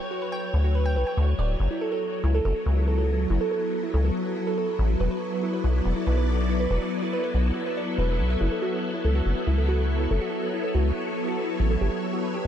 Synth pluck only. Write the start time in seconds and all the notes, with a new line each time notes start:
0.11 F#4
0.22 B4
0.32 G5
0.64 F#4
0.75 B4
0.86 G5
0.96 B4
1.07 G5
1.17 F#4
1.39 D5
1.71 E4
1.81 A4
1.92 A4
2.24 E4
2.34 A4
2.45 A4
2.77 E4
2.88 A4
2.98 A4
3.30 E4
3.41 A4
3.51 A4
3.83 E4
3.94 A4
4.05 A4
4.37 E4
4.47 A4
4.58 A4
4.90 E4
5.00 B4
5.11 B4
5.43 E4
5.53 B4
5.64 B4
5.96 E4
6.07 B4
6.17 B4
6.49 E4
6.60 B4
6.71 B4
7.02 E4
7.13 B4
7.24 B4
7.56 E4
7.66 B4
7.77 D5
7.98 B4
8.09 B4
8.30 E5
8.41 E4
8.52 A4
8.62 F#4
8.94 E4
9.05 A4
9.15 F#4
9.47 E4
9.58 A4
9.68 F#4
10.00 E4
10.11 A4
10.22 F#4
10.53 E4
10.64 A4
10.75 F#4
11.07 E4
11.17 A4
11.28 F#4
11.60 E4
11.71 A4
11.81 G4
12.13 F#4
12.24 B4
12.34 G4